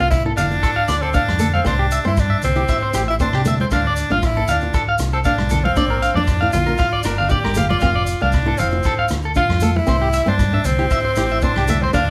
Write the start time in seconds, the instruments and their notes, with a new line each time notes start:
0.00 fingered electric bass C2, steel-string acoustic guitar C4, tenor saxophone F4, clean electric guitar F5
0.11 tenor saxophone E4, kick, cross-stick, maracas
0.25 steel-string acoustic guitar E4, clean electric guitar A4
0.37 fingered electric bass F1, tenor saxophone D4, clean electric guitar F5, closed hi-hat, low conga, maracas
0.51 steel-string acoustic guitar F4, maracas
0.63 clean electric guitar A4, kick, cross-stick, maracas
0.76 clean electric guitar F5
0.88 fingered electric bass D2, steel-string acoustic guitar F4, clean electric guitar D5, cross-stick, closed hi-hat, maracas
1.02 tenor saxophone C4, clean electric guitar A4, maracas
1.13 steel-string acoustic guitar D4, tenor saxophone D4, clean electric guitar F5, kick, maracas
1.28 fingered electric bass F2, cross-stick, high conga
1.39 steel-string acoustic guitar A3, clean electric guitar A4, closed hi-hat, low conga, maracas
1.54 tenor saxophone C4, clean electric guitar F5, high conga
1.65 fingered electric bass C2, tenor saxophone D4, clean electric guitar C5, muted steel-string acoustic guitar stroke, kick, cross-stick, maracas
1.79 clean electric guitar G4
1.91 clean electric guitar E5, closed hi-hat, maracas
2.04 fingered electric bass G2, steel-string acoustic guitar C4, tenor saxophone E4, clean electric guitar C5, high conga, maracas
2.17 tenor saxophone D4, kick, cross-stick, maracas
2.30 clean electric guitar E5
2.42 fingered electric bass C2, tenor saxophone C4, closed hi-hat, low conga, maracas
2.55 steel-string acoustic guitar E4, clean electric guitar G4, maracas
2.68 clean electric guitar E5, kick, cross-stick, maracas
2.83 clean electric guitar C5
2.93 fingered electric bass A1, steel-string acoustic guitar E4, clean electric guitar G4, cross-stick, closed hi-hat, maracas
3.08 tenor saxophone E4, clean electric guitar E5, maracas
3.19 steel-string acoustic guitar C4, tenor saxophone D4, clean electric guitar C5, kick, maracas
3.33 fingered electric bass C3, clean electric guitar G4, cross-stick
3.45 steel-string acoustic guitar A3, clean electric guitar E5, closed hi-hat, high conga, low conga, maracas
3.60 tenor saxophone C4, clean electric guitar C5, high conga
3.71 fingered electric bass D2, steel-string acoustic guitar D4, tenor saxophone D4, clean electric guitar F5, kick, cross-stick, maracas
3.87 clean electric guitar D5
3.96 closed hi-hat, maracas
4.10 fingered electric bass A1, steel-string acoustic guitar D4, tenor saxophone F4, clean electric guitar F5, high conga, maracas
4.22 tenor saxophone E4, kick, cross-stick, maracas
4.37 steel-string acoustic guitar E4, clean electric guitar A4
4.48 fingered electric bass D2, tenor saxophone D4, clean electric guitar F5, closed hi-hat, low conga, maracas
4.61 steel-string acoustic guitar F4, maracas
4.73 clean electric guitar A4, kick, cross-stick, maracas
4.89 clean electric guitar F5
4.98 fingered electric bass C2, steel-string acoustic guitar F4, cross-stick, closed hi-hat, maracas
5.12 tenor saxophone C4, clean electric guitar A4, maracas
5.24 tenor saxophone D4, steel-string acoustic guitar D4, clean electric guitar F5, kick, maracas
5.38 fingered electric bass B1, cross-stick, high conga
5.49 clean electric guitar A4, closed hi-hat, high conga, low conga, maracas
5.64 tenor saxophone C4, clean electric guitar F5, high conga
5.76 fingered electric bass A#1, steel-string acoustic guitar D4, clean electric guitar D5, kick, cross-stick, maracas
5.90 clean electric guitar A#4
6.02 clean electric guitar F5, closed hi-hat
6.15 fingered electric bass F2, steel-string acoustic guitar D4, tenor saxophone D4, clean electric guitar D5, high conga
6.27 kick, cross-stick, maracas
6.41 steel-string acoustic guitar E4, clean electric guitar F5
6.53 fingered electric bass A#1, tenor saxophone F4, closed hi-hat, high conga, low conga, maracas
6.66 steel-string acoustic guitar F4, clean electric guitar A#4, maracas
6.78 clean electric guitar F5, kick, cross-stick, maracas
6.93 clean electric guitar D5
7.03 fingered electric bass G1, tenor saxophone D4, steel-string acoustic guitar F4, clean electric guitar A#4, cross-stick, closed hi-hat, maracas
7.18 clean electric guitar F5, low conga
7.29 steel-string acoustic guitar D4, tenor saxophone G4, clean electric guitar D5, kick, maracas
7.44 fingered electric bass G1, clean electric guitar A#4, cross-stick, high conga
7.54 steel-string acoustic guitar A3, clean electric guitar F5, closed hi-hat, high conga, low conga, maracas
7.69 tenor saxophone F4, clean electric guitar D5, high conga
7.80 fingered electric bass F1, steel-string acoustic guitar C4, clean electric guitar F5, kick, cross-stick, maracas
7.95 clean electric guitar D5
8.07 closed hi-hat, maracas
8.20 fingered electric bass C2, tenor saxophone D4, clean electric guitar F5, muted steel-string acoustic guitar stroke, high conga, maracas
8.32 kick, cross-stick, maracas
8.46 steel-string acoustic guitar E4, clean electric guitar A4
8.58 fingered electric bass F1, tenor saxophone C4, clean electric guitar F5, closed hi-hat, low conga, maracas
8.70 steel-string acoustic guitar F4, maracas
8.83 clean electric guitar A4, kick, cross-stick, maracas
8.99 clean electric guitar F5
9.08 fingered electric bass D2, steel-string acoustic guitar F4, cross-stick, closed hi-hat, maracas
9.22 clean electric guitar A4, maracas
9.35 steel-string acoustic guitar D4, tenor saxophone F4, clean electric guitar F5, kick, maracas
9.49 fingered electric bass F2, cross-stick, high conga
9.60 steel-string acoustic guitar A3, clean electric guitar A4, closed hi-hat, high conga, low conga, maracas
9.76 tenor saxophone E4, muted clean electric guitar stroke, high conga
9.87 fingered electric bass C2, steel-string acoustic guitar C4, clean electric guitar C5, kick, cross-stick, maracas
10.02 clean electric guitar G4
10.13 clean electric guitar E5, closed hi-hat, maracas
10.26 fingered electric bass G2, steel-string acoustic guitar C4, tenor saxophone D4, clean electric guitar C5, high conga, maracas
10.39 kick, cross-stick, maracas
10.53 steel-string acoustic guitar D4, clean electric guitar E5
10.64 fingered electric bass C2, tenor saxophone C4, closed hi-hat, low conga, maracas
10.78 steel-string acoustic guitar E4, clean electric guitar G4, maracas
10.90 clean electric guitar E5, kick, cross-stick, maracas
11.05 clean electric guitar C5
11.15 fingered electric bass A1, steel-string acoustic guitar E4, clean electric guitar G4, cross-stick, closed hi-hat, maracas
11.29 clean electric guitar E5, maracas
11.41 steel-string acoustic guitar C4, tenor saxophone D4, clean electric guitar C5, kick, maracas
11.56 fingered electric bass C2, clean electric guitar G4, cross-stick, high conga
11.68 steel-string acoustic guitar A3, clean electric guitar E5, closed hi-hat, high conga, low conga, maracas
11.82 tenor saxophone C4, clean electric guitar C5, high conga
11.93 fingered electric bass D2, steel-string acoustic guitar D4, tenor saxophone D4, clean electric guitar F5, kick, cross-stick, maracas